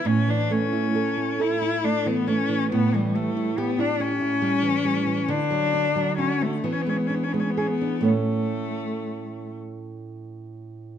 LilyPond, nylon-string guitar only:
\new Staff \with { instrumentName = "Nylon-string guitar" } { \time 6/8 \key a \major \tempo 4. = 45 a,16 e16 a16 e'16 a'16 e'16 a'16 e'16 a16 e16 a16 e16 | a,16 e16 g16 e'16 g'16 e'16 g'16 e'16 g16 e16 g16 e16 | d16 fis16 d'16 fis16 fis'16 d'16 e16 gis16 d'16 gis16 gis'16 d'16 | <a, a cis'>2. | }